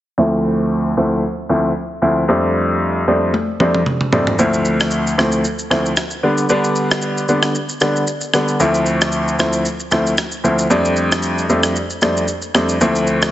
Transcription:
0.18 grand piano D2 F3 A3 C4 E4
0.97 grand piano D2 F3 A3 C4 E4
1.49 grand piano D2 F3 A3 C4 E4
2.02 grand piano D2 F3 A3 C4 E4
2.28 grand piano F2 G3 A3 C4 D4
3.07 grand piano F2 G3 A3 C4 D4
3.34 high tom
3.60 grand piano F2 G3 A3 C4 D4, mid tom
3.75 mid tom
3.86 mid tom
4.01 mid tom
4.12 grand piano F2 G3 A3 C4 D4, floor tom
4.27 floor tom
4.39 grand piano D2 F3 A3 C4 E4, shaker
4.54 shaker
4.65 shaker
4.81 cross-stick, shaker
4.91 shaker
5.07 shaker
5.18 grand piano D2 F3 A3 C4 E4, cross-stick
5.32 shaker
5.45 shaker
5.59 shaker
5.70 grand piano D2 F3 A3 C4 E4, cross-stick
5.86 shaker
5.97 cross-stick, shaker
6.11 shaker
6.23 grand piano D3 G3 B3 D4
6.38 shaker
6.49 grand piano D3 G3 B3 D4, shaker
6.64 shaker
6.76 shaker
6.91 cross-stick, shaker
7.02 shaker
7.18 shaker
7.28 grand piano D3 G3 B3 D4, shaker
7.43 cross-stick, shaker
7.55 shaker
7.69 shaker
7.81 grand piano D3 G3 B3 D4, cross-stick, shaker
7.96 shaker
8.08 shaker
8.21 shaker
8.34 grand piano D3 G3 B3 D4, cross-stick, shaker
8.49 shaker
8.60 grand piano D2 F3 A3 C4 E4, shaker
8.75 shaker
8.86 shaker
9.02 cross-stick, shaker
9.12 shaker
9.28 shaker
9.39 grand piano D2 F3 A3 C4 E4, cross-stick, shaker
9.53 shaker
9.66 shaker
9.80 shaker
9.91 grand piano D2 F3 A3 C4 E4, cross-stick, shaker
10.07 shaker
10.18 cross-stick, shaker
10.32 shaker
10.44 grand piano D2 F3 A3 C4 E4, shaker
10.59 shaker
10.70 grand piano F2 G3 A3 C4 D4, shaker
10.85 shaker
10.97 shaker
11.12 cross-stick, shaker
11.23 shaker
11.39 shaker
11.49 grand piano F2 G3 A3 C4 D4, shaker
11.63 cross-stick, shaker
11.76 shaker
11.91 shaker
12.02 grand piano F2 G3 A3 C4 D4, cross-stick, shaker
12.17 shaker
12.28 shaker
12.42 shaker
12.54 grand piano F2 G3 A3 C4 D4, cross-stick, shaker
12.69 shaker
12.81 grand piano D2 F3 A3 C4 E4, shaker
12.96 shaker
13.07 shaker
13.23 cross-stick, shaker

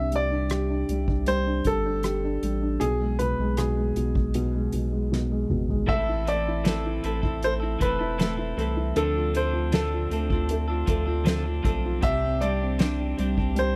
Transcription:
Already playing: sub bass C2, upright piano C3 D4, grand piano E5
0.12 upright piano G3, grand piano D5, closed hi-hat
0.31 upright piano D4
0.50 upright piano G4, cross-stick, closed hi-hat
0.69 upright piano D4
0.89 sub bass C2, upright piano G3, closed hi-hat
1.08 upright piano D4, kick
1.26 upright piano G3, grand piano C5, closed hi-hat
1.47 upright piano D4
1.65 sub bass G1, upright piano G3, grand piano A4, kick, closed hi-hat
1.85 upright piano D4
2.03 upright piano G4, cross-stick, closed hi-hat
2.24 upright piano D4
2.43 sub bass A1, upright piano G3, closed hi-hat
2.62 upright piano D4
2.80 sub bass B1, upright piano B2, grand piano G#4, closed hi-hat
3.01 upright piano G#3
3.19 upright piano B2, grand piano B4, closed hi-hat
3.39 sub bass B1, upright piano G#3
3.57 upright piano B2, grand piano G#4, cross-stick, closed hi-hat
3.78 upright piano G#3
3.96 sub bass B1, upright piano B2, closed hi-hat
4.15 upright piano G#3, kick
4.34 upright piano B2, closed hi-hat
4.55 upright piano G#3
4.72 sub bass B1, upright piano B2, closed hi-hat
4.92 upright piano G#3
5.12 upright piano B2, snare
5.32 upright piano G#3
5.50 sub bass G#1, upright piano B2, mid tom
5.69 upright piano G#3, floor tom
5.87 sub bass A1, clean electric guitar A2 E3 C4 E4 A4, grand piano E5, kick, crash
6.09 upright piano E4
6.25 clean electric guitar E3 C4 E4 A4, upright piano A3, grand piano D5, closed hi-hat
6.48 upright piano E4
6.64 clean electric guitar A2 E3 C4 E4 A4, snare, closed hi-hat
6.68 upright piano A3
6.86 upright piano E4
7.03 sub bass A1, clean electric guitar E3 C4 E4 A4, upright piano A3, closed hi-hat
7.22 clean electric guitar C4 E4 A4, upright piano E4, kick
7.43 upright piano A3, grand piano C5, closed hi-hat
7.60 clean electric guitar C4 E4 A4, upright piano E4
7.79 sub bass E1, clean electric guitar E3 C4 E4 A4, upright piano A3, grand piano B4, kick, closed hi-hat
7.99 clean electric guitar C4 E4 A4, upright piano E4
8.18 clean electric guitar A2 E3 C4 E4 A4, upright piano A3, snare, closed hi-hat
8.37 clean electric guitar C4 E4 A4, upright piano E4
8.57 sub bass C2, clean electric guitar E3 C4 E4 A4, upright piano A3, closed hi-hat
8.77 upright piano E4
8.96 sub bass D2, upright piano D3, clean electric guitar D3 F3 C4 D4 A4, grand piano A4, closed hi-hat
9.17 upright piano F4
9.34 clean electric guitar F3 C4 D4 A4, upright piano A3, grand piano C5, closed hi-hat
9.53 upright piano F4
9.72 clean electric guitar D3 F3 C4 D4 A4, upright piano A3, grand piano A4, snare, closed hi-hat
9.94 upright piano F4
10.11 sub bass D2, clean electric guitar F3 C4 D4 A4, upright piano A3, closed hi-hat
10.30 clean electric guitar C4 D4 A4, upright piano F4, kick
10.49 upright piano A3, closed hi-hat
10.68 clean electric guitar C4 D4 A4, upright piano F4
10.86 sub bass D2, clean electric guitar F3 C4 D4 A4, upright piano A3, kick, closed hi-hat
11.06 clean electric guitar C4 D4 A4, upright piano F4
11.24 clean electric guitar D3 F3 C4 D4 A4, upright piano A3, snare, closed hi-hat
11.44 clean electric guitar C4 D4 A4, upright piano F4
11.63 sub bass B1, clean electric guitar F3 C4 D4 A4, upright piano A3, kick, closed hi-hat
11.86 upright piano F4
12.01 sub bass C2, clean electric guitar C3 G3 C4 D4 G4, upright piano C3, grand piano E5, kick, closed hi-hat
12.24 upright piano C4
12.40 clean electric guitar G3 C4 D4 G4, upright piano G3, grand piano D5, closed hi-hat
12.61 upright piano C4
12.79 clean electric guitar C3 G3 C4 D4 G4, upright piano D4, snare, closed hi-hat
13.00 upright piano C4
13.18 sub bass C2, clean electric guitar G3 C4 D4 G4, upright piano G3, closed hi-hat
13.37 upright piano C4, clean electric guitar C4 D4 G4, kick
13.56 upright piano G3, grand piano C5, closed hi-hat

